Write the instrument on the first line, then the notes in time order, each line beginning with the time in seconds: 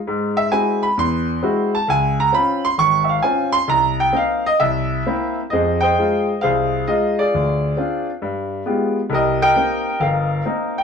grand piano
0.07 G#2
0.37 E5
0.52 G#3 C4 E4 F#4 G#5
0.83 B5
0.97 E2 C6
1.42 G#3 C4 E4 F#4
1.75 A5
1.88 C#2 G#5
2.20 A#5
2.32 C4 C#4 F4 B5
2.65 C6
2.78 G#1 C#6
3.04 E5
3.09 F5
3.23 C4 C#4 F4 G#5
3.52 C6
3.68 C2 A#5
4.00 G5
4.13 A#3 C4 D#4 F5
4.46 D#5
4.60 C2 E5
5.06 A#3 C4 E4
5.50 F2 G#4 C5 D#5
5.81 C5 D#5 G5
5.99 G#3 D#4 F4
6.41 C2 G#4 C5 F5
6.87 G#3 D#4 F4 D#5
7.19 F4 G#4 D5
7.34 D2
7.77 C4 D4 F4
8.22 G2
8.66 G#3 B3 F4 G4
9.10 C2 G4 A#4
9.14 D#5
9.42 A#4 D#5 G5
9.56 A#3 C4 D#4
10.00 G1 A#4 F5
10.45 A#3 C4 D#4
10.78 G5